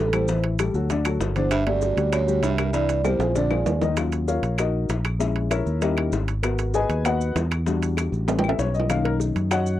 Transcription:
Already playing: A1
0.06 C#2 A4
0.13 E2 G3 G4 A4 C5, high bongo, high timbale, claves, maracas
0.28 E3 E4 E5, high bongo, maracas
0.44 high bongo, high timbale
0.59 G3 G4 A4, high bongo, high timbale, claves, maracas
0.74 D2 F#3 F#4 A4, high bongo, maracas
0.90 D3 D4 D5, high bongo, high timbale, maracas
1.05 F#3 F#4 A4, high bongo, high timbale, claves, maracas
1.20 G1, high bongo, low bongo, low timbale, maracas
1.36 E2 D3 D4 C5 D5, high timbale, maracas
1.51 G2 E5, high bongo, high timbale, claves, maracas
1.66 F#2 A3 F#4 G4 D5, high bongo, high timbale
1.81 high bongo, maracas
1.97 D2 G3 F#4 G4, high bongo, high timbale, maracas
2.12 F#2 C#5, high bongo, high timbale, claves, maracas
2.28 G3 F#4 G4, maracas
2.42 C2 G2 E5, high bongo, low bongo, high timbale, maracas
2.58 G3 G4 A#4, high bongo, high timbale, claves, maracas
2.73 G2 E3 E4 D5 E5, high bongo, maracas
2.89 high bongo, high timbale, maracas
3.04 E2 G3 G4 A#4 C5, high bongo, high timbale, claves, maracas
3.19 A#1 F3 F4 G#4, high bongo, high timbale, maracas
3.35 F2 D3 D4 D5, high bongo, maracas
3.51 F3 F4 G#4, low bongo, low timbale, claves
3.66 D#2, low bongo, low timbale, maracas
3.81 D#3 D#4 D#5, low bongo, low timbale, maracas
3.97 F#3 C#4 F4, high bongo, high timbale, claves, maracas
4.12 high bongo, high timbale, maracas
4.28 F4 A#4 C#5 F5, high bongo, maracas
4.42 A#1, high bongo, high timbale, maracas
4.58 D#4 F#4 A#4 D#5, high bongo, high timbale, claves, maracas
4.89 A#1, high bongo, low bongo, high timbale, maracas
5.05 high bongo, high timbale, claves, maracas
5.19 G#3 C#4 E4, high bongo, maracas
5.35 high bongo, high timbale
5.51 E4 A#4 C#5 E5, high bongo, high timbale, claves, maracas
5.66 D#2, high bongo, maracas
5.81 G3 C#4 D#4 E4 G4 A#4 D#5, high bongo, high timbale, maracas
5.97 high bongo, high timbale, claves
6.12 G#1, high bongo, low bongo, maracas
6.28 high timbale, maracas
6.43 B3 F#4 A#4, high bongo, high timbale, claves, maracas
6.59 high bongo, high timbale, maracas
6.74 G#4 B4 D#5 G#5, high bongo, maracas
6.89 D#2, high bongo, high timbale, maracas
7.05 A#3 B3 F#4 B4 D#5 F#5, high bongo, high timbale, claves, maracas
7.21 maracas
7.35 E2, high bongo, low bongo, high timbale, low timbale, maracas
7.51 high bongo, high timbale, claves, maracas
7.66 G3 D4 F#4, high bongo, maracas
7.82 high bongo, high timbale, maracas
7.97 high bongo, high timbale, claves, maracas
8.12 A1, high bongo, maracas
8.28 G3 B3 C#4, high bongo, high timbale, maracas
8.39 G5, low timbale
8.44 high bongo, claves
8.48 E5, high timbale
8.59 B1 C#5, high bongo, low bongo, maracas
8.74 D#5, maracas
8.80 low timbale
8.89 D#3 A#3 C#4 D#4 F5, high bongo, high timbale, claves, maracas
9.05 A#4, high bongo, high timbale
9.20 high bongo, maracas
9.36 F#2, high bongo, high timbale, maracas
9.51 F#4 C#5 D#5 F#5, high bongo, high timbale, claves, maracas
9.66 maracas

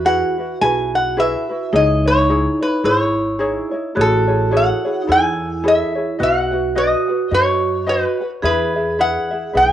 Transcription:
Already playing: E2 F#4
0.05 E4 F#4 G#4 B4 F#5
0.38 E4 F#4 B4
0.61 B1 E4 F#4 G#4 B4 G#5
0.95 F#5
1.17 E4 F#4 G#4 B4 E5
1.49 E4 F#4 B4
1.73 C#2 D#4 E4 G#4 C#5 D#5
2.05 D#4 E4 C#5
2.29 D#4 E4 G#4 C#5
2.61 D#4 E4 B4 C#5
2.84 G#1 E4 G#4 C#5
3.39 D#4 E4 G#4 C#5
3.71 D#4 E4 C#5
3.95 A1 E4 F#4 G#4 A4 C#5
4.01 A4
4.28 E4 G#4 C#5
4.51 E4 G#4 A4 C#5
4.57 F#5
4.85 E4 G#4 C#5
5.02 D#4
5.07 E2 E4 G#4 A4 C#5
5.12 G#5
5.64 E4 G#4 A4 C#5
5.68 E5
5.95 E4 G#4 C#5
6.18 B1 F#4 B4 D#5 F#5
6.23 F#5
6.51 F#4 B4 F#5
6.75 F#4 B4 D#5 F#5
7.08 F#4 B4 F#5
7.31 F#2 F#4 B4 C#5 D#5 F#5
7.87 F#4 B4 D#5 F#5
8.21 F#4 B4 F#5
8.42 E2 E4 G#4 B4 E5
8.76 E4 G#4 E5
8.99 E4 G#4 B4 E5 F#5
9.31 E4 G#4 E5
9.53 B1 E4 G#4 B4 E5 G#5

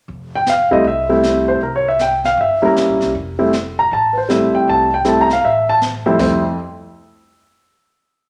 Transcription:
0.08 F1, brush sweep
0.35 G5
0.46 F5, snare, hi-hat pedal
0.71 G3 A3 C4 E4 D#5, kick
0.84 C2 E5, brush sweep
1.09 G3 A3 C4 E4
1.23 snare, hi-hat pedal
1.48 C5
1.61 C2 A#4, brush sweep
1.76 C#5
1.88 E5
1.99 G5, snare, hi-hat pedal
2.24 F5, snare
2.37 G1 E5, brush sweep
2.62 G3 A#3 C#4 E4 A#4
2.76 snare, hi-hat pedal
2.88 A#1
3.01 C2, snare
3.15 F1, brush sweep
3.39 G3 A3 C4 E4
3.53 snare, hi-hat pedal
3.79 A#5
3.91 A1 A5, brush sweep
4.13 B4
4.18 C5
4.29 G3 A3 C4 E4 E5, snare, hi-hat pedal
4.54 G5, muted upright bass stroke
4.67 C2 A5, brush sweep
4.94 G5
5.05 G3 A3 C4 E4, snare, hi-hat pedal
5.09 A5
5.21 A#5
5.30 F5, snare
5.43 A1 E5, brush sweep
5.69 A5
5.82 snare, hi-hat pedal
6.06 F2 G3 A3 C4 E4
6.19 F1 G3 A3 C4 E4 C5, kick, snare, crash

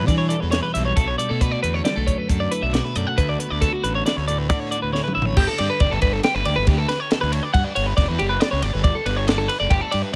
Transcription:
Already playing: E2 B2 E3 G3 G4
0.07 E3 D4 D5, kick, snare, closed hi-hat
0.18 C#5
0.29 A4 D5, closed hi-hat
0.40 E2 B4
0.51 E2 E4 C#5, snare, closed hi-hat
0.63 G4 B4
0.74 B1 G3 E5, snare, closed hi-hat
0.85 C#5
0.96 B1 B2 F#4 A4, kick, closed hi-hat
1.08 C#5
1.18 G3 D5, closed hi-hat
1.29 B2 A3 A4
1.41 F#4 B4, kick, closed hi-hat
1.52 D5
1.62 E2 D3 B4, closed hi-hat
1.74 C#5
1.84 G3 D5, snare, closed hi-hat
1.96 B1 A3 A4
2.07 F#2 C#5, kick, closed hi-hat
2.18 B4
2.29 F#2 D4 A4, kick, closed hi-hat
2.40 D5
2.51 E4 B4, closed hi-hat
2.61 B1 F#4 E5
2.73 B2 F#4 D5, snare, closed hi-hat
2.85 B4
2.95 F#2 A3 D5, closed hi-hat
3.07 F#5
3.17 D2 F#4 B4, kick, closed hi-hat
3.29 D5
3.39 B3 B4, closed hi-hat
3.51 D2 D5
3.61 F#4 A4, kick, snare, closed hi-hat
3.73 F#4
3.84 A1 D3 B4, closed hi-hat
3.95 C#5
4.06 B3 D5, snare, closed hi-hat
4.17 D2 C#5
4.28 A2 D5, closed hi-hat
4.38 B4
4.49 D3 D4 D5, kick, closed hi-hat
4.60 C#5
4.71 F#4 D5, closed hi-hat
4.82 D2 B4
4.92 D2 E4 C#5, snare
5.04 B4
5.08 mid tom
5.15 A1 B3 E5
5.22 C#5, floor tom
5.37 G1 G4, kick, crash
5.47 A4
5.58 G2 D5, snare, ride
5.70 B4
5.80 F#1 D5, kick, ride
5.91 G1 A4
6.02 G1 B4, kick, ride
6.13 A4
6.23 G4, snare, ride
6.35 G1 B4
6.45 D2 D5, ride
6.56 G1 B4
6.67 D2 G4, kick, snare, ride
6.78 A4
6.89 B4, snare, ride
7.00 C#5
7.11 A4, snare, ride
7.21 D2 B4
7.32 C#5, ride
7.43 D5
7.54 G2 F#5, kick, ride
7.64 D5
7.75 G1 C#5, ride
7.87 B4
7.97 F#1 D5, kick, snare, ride
8.08 E2 B4
8.19 F#1 G4, ride
8.29 B4
8.40 D5, snare, ride
8.51 C#2 C#5
8.62 G1 D5, ride
8.73 G1 B4
8.84 D5, kick, ride
8.95 A4
9.06 G1 B4, ride
9.16 C#5
9.28 D5, snare, ride
9.38 A4
9.48 B4, ride
9.60 F#1 D5
9.70 G1 G4, kick, ride
9.81 A4
9.91 G2 D5, ride
10.02 B4

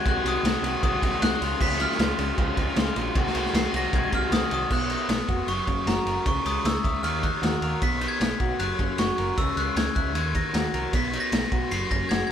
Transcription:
0.05 C2 C3 D#3 G#3 C4 F#4 F#6, kick, ride
0.24 C2 C3 D#3 G#3 C4 F#4 D#6, ride
0.43 C2 C3 D#3 G#3 C4 F#4, snare, ride
0.62 C2 C3 D#3 G#3 C4 F#4, ride
0.82 C2 C3 D#3 G#3 C4 F#4 D#6, kick, ride
1.02 C2 C3 D#3 G#3 C4 F#4, kick, ride
1.21 C2 C3 D#3 G#3 C4 F#4 F#6, snare, ride
1.41 C#2 C#3 F3 G#3 C4 F4, ride
1.61 C#2 C#3 F3 G#3 C4 F4 B6, kick, crash
1.72 snare
1.80 C#3 F3 G#3 C4 F4 F6, ride
1.91 snare
1.98 C#2 C#3 F3 G#3 C4 F4, snare, ride
2.18 C#2 C#3 F3 G#3 C4 F4, ride
2.38 C#2 C#3 F3 G#3 C4 F4, kick, ride
2.57 C#2 C#3 F3 G#3 C4 F4, kick, ride
2.76 C#2 C#3 F3 G#3 C4 F4, snare, ride
2.96 A#1 C#3 F3 G#3 C4 F4, ride
3.15 C2 C3 D#3 G#3 C4 F#4, kick, ride
3.26 snare
3.34 C2 C3 D#3 G#3 C4 F#4, ride
3.46 snare
3.53 C2 C3 D#3 G#3 C4 F#4 C7, snare, ride
3.73 C2 C3 D#3 G#3 C4 F#4 A#6, ride
3.92 C2 C3 D#3 G#3 C4 F#4 G#6, kick, ride
4.12 C2 C3 D#3 G#3 C4 F#4 F6, kick, ride
4.31 C2 C3 D#3 G#3 C4 F#4 D#6, snare, ride
4.51 C2 C3 D#3 G#3 C4 F#4 D#6, ride
4.71 B1 B3 F#6, kick, crash
4.90 D#4, ride
4.97 D#6
5.09 B1 B3, snare, ride
5.28 F1 F#4, kick, ride
5.47 F#1 F#3 C#6, ride
5.67 F#1 C#4, kick, ride
5.86 F#1 F#4 A#5, snare, ride
6.05 F#1 A#4, ride
6.26 C#2 C#3 C#6, kick, ride
6.45 C#2 G#3 D#6, ride
6.64 C#2 G#3 E6, snare, ride
6.84 C#2 E4 D#6, kick, ride
7.03 D#2 D#3 F6, ride
7.23 D#4 F#6, kick, ride
7.42 D#2 F#4, snare, ride
7.61 D#2 A#4, ride
7.82 B1 B3 B6, kick, ride
8.01 D#4, ride
8.08 G#6
8.20 B1 B3, snare, ride
8.40 B1 F#4, kick, ride
8.59 F#1 F#3 F#6, ride
8.79 F#1 C#4, kick, ride
8.98 F#1 F#4 C#6, snare, ride
9.18 F#1 A#4, ride
9.37 C#2 C#3 E6, kick, ride
9.56 C#2 G#3 F#6, ride
9.76 C#2 G#3 G#6, snare, ride
9.95 C#2 E4 F#6, kick, ride
10.15 D#2 D#3 G#6, ride
10.35 D#4 A#6, kick, ride
10.54 D#2 F#4, snare, ride
10.73 C2 A#4, ride
10.93 B1 B3 B6, kick, ride
11.13 D#4, ride
11.20 A#6
11.32 B1 B3, snare, ride
11.52 B1 F#4, kick, ride
11.71 F#1 F#3 C7, ride
11.90 F#1 C#4 A#6, kick, ride
12.09 F#1 F#4 G#6, snare, ride
12.27 G#6

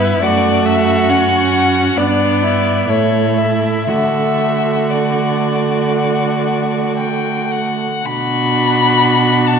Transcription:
Already playing: G2 B3 E4 B4
0.22 F#2 A3 F#4 D5
0.66 E5
1.09 C#4 F#5
1.97 G2 B3 D4 D5
2.43 E4
2.89 A2 A3 E4 C#5
3.38 E5
3.87 D3 A3 F#4 E5
4.90 D5
6.96 G5
7.52 F#5
8.05 B2 D4 F#4 B5
9.47 A5

